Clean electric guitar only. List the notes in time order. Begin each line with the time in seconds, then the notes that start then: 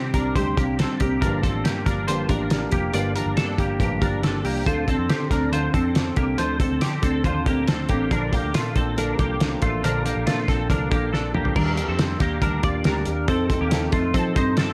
Already playing: C4 G4
0.14 D4 A#4
0.36 G4 C5
0.57 A#3 G4
0.79 C4 A4
1.00 A#3 G4
1.21 D4 A#4
1.43 C4 A4
1.64 A#3 G4
1.86 D4 A#4
2.08 F4 C5
2.29 D4 A#4
2.72 A#3 G4
2.94 F4 D5
3.16 D4 A#4
3.37 D4 A4
3.59 A#3 G4
3.80 A#3 G4
4.01 D4 A#4
4.23 D4 A4
4.45 A#3 G4
4.66 F4 C5
4.88 C4 A4
5.09 C4 G4
5.31 D4 A#4
5.53 F4 C5
5.74 C4 A4
6.17 A#3 G4
6.38 F4 C5
6.60 C4 A4
6.81 C4 G4
7.03 C4 A4
7.25 F4 C5
7.46 A#3 G4
7.68 C4 A4
7.89 A#3 G4
8.11 D4 A#4
8.33 A#3 G4
8.55 A3 F4
8.76 C4 A4
8.98 D4 A#4
9.19 A#3 G4
9.62 A3 F4
9.84 D4 A#4
10.05 A#3 G4
10.26 A3 F4
10.48 C4 A4
10.70 D4 A#4
10.91 A#3 G4
11.13 D4 A4
11.35 A#3 G4
11.56 D4 A#4
11.89 C4 A4
12.21 A#3 G4
12.42 D4 A#4
12.64 F4 D5
12.86 D4 A#4
13.28 C4 A4
13.61 A#3 G4
13.93 A3 F4
14.14 C4 A4
14.36 D#4 C5
14.58 C4 A4